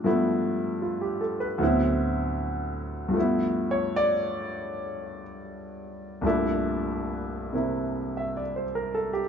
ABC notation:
X:1
M:4/4
L:1/16
Q:"Swing" 1/4=78
K:Gmix
V:1 name="Grand piano"
z4 F G A B z8 | z2 ^c2 d6 z6 | z8 z2 e d c _B A G |]
V:2 name="Grand piano"
[G,,F,A,B,E]8 [D,,A,,^F,B,CE]8 | [G,,F,A,B,E]16 | [C,,G,,_B,,A,DE]6 [C,_B,CE]8- [C,B,CE]2 |]